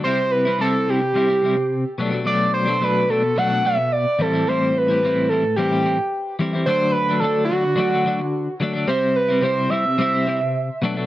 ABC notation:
X:1
M:4/4
L:1/16
Q:1/4=108
K:Clyd
V:1 name="Analog synth lead"
c2 B2 A2 G8 z2 | d2 c2 B2 A2 f2 e2 d2 A2 | c2 B4 A2 G6 z2 | c2 B2 A2 F8 z2 |
c2 B2 c2 e8 z2 |]
V:2 name="Clean electric guitar"
[C,G,CE]3 [G,CE] [C,G,CE]2 [C,G,CE]2 [C,G,CE] [CE] [C,G,CE]3 z [B,,F,A,D] [F,A,D] | [B,,F,A,D]3 [F,A,D] [B,,F,A,D]2 [B,,F,A,D]2 [B,,F,A,D] [F,A,D] [B,,F,A,D]3 z [A,,E,G,CE] [G,CE] | [A,,E,G,CE]3 [G,CE] [A,,E,G,CE]2 [E,G,CE]2 [A,,E,G,CE] [G,CE] [E,G,CE]3 z [E,G,CE] [G,CE] | [D,F,A,D]3 [F,A,D] [D,F,A,D]2 [D,F,A,D]2 [D,F,A,D] [F,A,D] [D,F,A,D]3 z [D,F,A,D] [F,A,D] |
[C,G,CE]3 [G,CE] [C,G,CE]2 [C,G,CE]2 [C,G,CE] [G,CE] [C,G,CE]3 z [B,,F,A,D] [F,A,D] |]